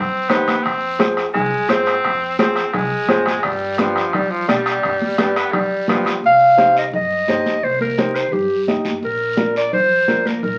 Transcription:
Already playing: C4
0.28 D#2 B3 D#4 G4 C5, bombo rim, high conga, short guiro
0.48 bombo rim, high conga, short guiro
0.63 F2 C4, bombo low, bombo rim, high conga, long guiro
0.99 F4 G#4 C5, bombo rim, high conga, short guiro
1.17 bombo rim, short guiro
1.33 C2 G#3, bombo low, bombo rim, high conga, low conga, long guiro
1.68 G#2 C4 F4 G#4 C5, bombo rim, high conga, short guiro
1.86 bombo rim, short guiro
2.04 F2, bombo low, bombo rim, high conga, long guiro
2.39 C4 F4 G#4 C5, bombo rim, high conga, short guiro
2.56 bombo rim, short guiro
2.73 C2 G#3, bombo low, bombo rim, high conga, low conga, long guiro
3.09 G#2 F4 G#4 C5, bombo low, bombo rim, high conga, short guiro
3.26 bombo rim, high conga, short guiro
3.43 G2 G3, bombo low, bombo rim, high conga, long guiro
3.77 F3 D4 G4 B4, bombo rim, high conga, short guiro
3.96 bombo rim, short guiro
4.13 D2 G3, bombo low, bombo rim, high conga, low conga, long guiro
4.31 F3
4.47 B2 G3 D4 G4 D5, bombo rim, high conga, short guiro
4.66 bombo rim, short guiro
4.83 G2, bombo low, bombo rim, high conga, long guiro
5.02 high conga
5.18 G3 D4 G4 B4, bombo rim, high conga, short guiro
5.36 B3, bombo rim, short guiro
5.52 D2 G3, bombo low, bombo rim, high conga, low conga, long guiro
5.88 D2 F3 D4 G4 B4, bombo rim, high conga, low conga, short guiro
6.05 bombo rim, high conga, short guiro
6.23 C2 F5, high conga, long guiro
6.57 D#4 G4 C5, high conga, short guiro
6.77 D#5, short guiro
6.92 G2 D#5, high conga, low conga, long guiro
7.27 G2 D#4 G4 C5, high conga, short guiro
7.46 high conga, short guiro
7.63 C2 C5, high conga, long guiro
7.81 A#4, high conga
7.98 D#4 G4 C5, high conga, short guiro
8.15 C5, short guiro
8.32 G2 G4, high conga, low conga, long guiro
8.67 G2 D#4 G4 D#5, high conga, short guiro
8.85 high conga, short guiro
9.03 A#1 A#4, high conga, long guiro
9.37 D4 F4 A#4, high conga, short guiro
9.56 D5, short guiro
9.73 F2 C5, high conga, low conga, long guiro
10.08 F2 D4 F4 A#4, high conga, short guiro
10.25 A#4, high conga, short guiro
10.43 A#1 A#4, high conga, low conga, long guiro

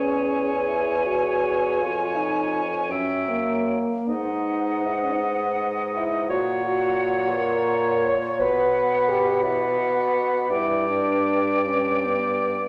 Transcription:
Already playing: E2 C#4 G#4 C#5 G#5
0.67 E4
1.06 F#4
1.81 F2 F4 B4
2.16 D#4
2.89 F#2 C#4 C#5 E5 G5
3.29 A#3
4.09 G#2 D#4 B4 D#5 F#5
4.86 E4
4.95 D#4
5.04 C#4
5.13 D#4
5.94 E4
6.29 A#2 F#4 C#5 F#5
6.65 F#4
7.30 B4
7.37 A#4
8.06 C#5
8.40 B2 B4 F#5
9.09 G4
9.43 E4 B4 D5 F#5
9.78 F#4
10.50 G2 E4 B4 D5 G5
10.87 D4
11.66 C#4
12.05 B3

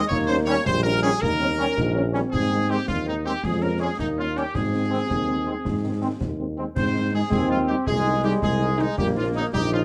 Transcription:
0.08 D#2 A#3 C#5, concert bass drum, snare, crash
0.12 C#5
0.27 D#3 G3 C#4 C5
0.46 D#3 G3 C#4 C#5
0.66 A#1 G3 C5, concert bass drum, snare
0.83 D#3 G3 C#4 A#4
1.02 D#3 G3 C#4 G#4
1.21 D#2 A#3 A#4, concert bass drum, snare
1.39 D#3 G3 C4 C#4
1.58 D#3 G3 C#4
1.77 A#1 D#4, concert bass drum, snare
1.95 D#3 G3 C#4
2.13 D#3 G3 C4 C#4, snare
2.32 G#2 G#4, concert bass drum, snare, crash
2.51 D#3 G#3 C4
2.69 D#3 G#3 C4 G4
2.88 D#2 F4, concert bass drum, snare
3.06 D#3 G#3 C4 D#4
3.25 D#3 G#3 C4 G4
3.43 F2 G#3 G#4, concert bass drum, snare
3.61 F3 G#3 C#4 A#4
3.80 F3 G#3 C#4 G#4
3.99 D#2 A#3 D#4, concert bass drum, snare
4.18 G3 A#3 C#4 F4
4.36 G3 A#3 C#4 G4, snare
4.54 G#2 C4 G#4, concert bass drum, snare, crash
4.74 D#3 G#3 C4
4.90 D#3 G#3 C4
5.10 D#2, concert bass drum, snare
5.28 D#3 G#3 C4
5.46 D#3 G#3 C4
5.65 G#2, concert bass drum, snare
5.84 D#3 G#3 C4
6.02 D#3 G#3 C4
6.21 D#2, concert bass drum, snare
6.39 D#3 G#3 C4
6.58 D#3 G#3 C4
6.76 G#2 C4 C5, concert bass drum, snare, crash
6.95 D#3 G#3 D#4
7.12 D#3 G#3 D#4 G#4
7.30 D#2 G#3 C4 G#4, concert bass drum, snare
7.49 D#3 F3 G#3 D#4 F4
7.67 D#3 G3 G#3 D#4 G4
7.86 C2 G#3 G#4, concert bass drum, snare
8.05 D#3 G#3 D#4
8.24 D#3 G3 G#3 D#4 G4
8.42 C2 G#3 G#4, concert bass drum, snare
8.60 D#3 G#3 D#4
8.78 D#3 G#3 D#4, snare
8.98 A#1 G3 A#3 G4, concert bass drum, snare, crash
9.15 D#3 F3 C#4 D#4 F4
9.34 D#3 C#4 D#4
9.52 A#1 G3 D#4 G4, concert bass drum, snare
9.72 D#3 F3 C#4 D#4 F4

